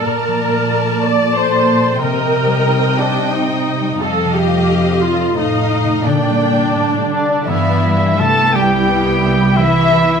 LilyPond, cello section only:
\new Staff \with { instrumentName = "Cello section" } { \clef bass \time 3/4 \key bes \major \tempo 4 = 89 << { r2. | r2. | r2. | r4. d8 e4 |
\key c \major a8 g4. e4 | } \\ { bes,2. | c2. | f,2 a,4 | bes,4 a,8 r8 g,8 r8 |
r2. | } >> }